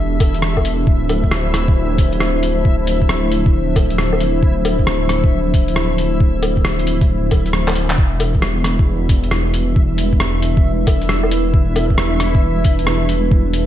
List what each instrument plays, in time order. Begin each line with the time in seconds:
Already playing: detuned saw bass E1, ambient pad E3 D4 G4 A4, synth texture E4 E5
0.20 kick, closed hi-hat, low woodblock
0.34 closed hi-hat
0.42 cross-stick
0.57 kick, low woodblock
0.65 closed hi-hat
0.87 detuned saw bass D1, ambient pad F3 E4 C5, kick
1.09 closed hi-hat, low woodblock
1.24 kick
1.31 cross-stick
1.54 cross-stick, closed hi-hat
1.68 kick
1.98 kick, closed hi-hat
2.13 closed hi-hat
2.20 cross-stick
2.43 closed hi-hat
2.65 kick
2.87 closed hi-hat
3.02 kick
3.09 cross-stick
3.32 closed hi-hat
3.46 kick
3.76 kick, closed hi-hat, low woodblock
3.90 closed hi-hat
3.98 cross-stick
4.13 low woodblock
4.20 closed hi-hat
4.43 ambient pad E4, kick
4.65 closed hi-hat, low woodblock
4.79 kick
4.87 cross-stick
5.09 cross-stick, closed hi-hat
5.24 kick
5.54 kick, closed hi-hat
5.68 closed hi-hat
5.76 cross-stick
5.98 closed hi-hat
6.20 kick
6.43 closed hi-hat, low woodblock
6.57 kick
6.65 cross-stick
6.79 closed hi-hat
6.87 closed hi-hat
7.01 kick, closed hi-hat
7.31 kick, closed hi-hat, low woodblock
7.46 closed hi-hat
7.53 cross-stick
7.68 clap, low woodblock
7.76 closed hi-hat
7.90 clap
7.98 detuned saw bass E1, ambient pad G3 D4 E4 B4, synth texture E4 E5, kick
8.20 closed hi-hat, low woodblock
8.35 kick
8.42 cross-stick
8.64 cross-stick, closed hi-hat
8.79 kick
9.09 kick, closed hi-hat
9.24 closed hi-hat
9.31 cross-stick
9.54 closed hi-hat
9.76 kick
9.98 closed hi-hat
10.13 kick
10.20 cross-stick
10.42 closed hi-hat
10.57 kick
10.87 kick, closed hi-hat, low woodblock
11.02 closed hi-hat
11.09 cross-stick
11.23 low woodblock
11.31 closed hi-hat
11.54 kick
11.76 closed hi-hat, low woodblock
11.90 kick
11.98 cross-stick
12.20 cross-stick, closed hi-hat
12.35 kick
12.64 kick, closed hi-hat
12.79 closed hi-hat
12.87 cross-stick
13.09 closed hi-hat
13.31 kick
13.53 closed hi-hat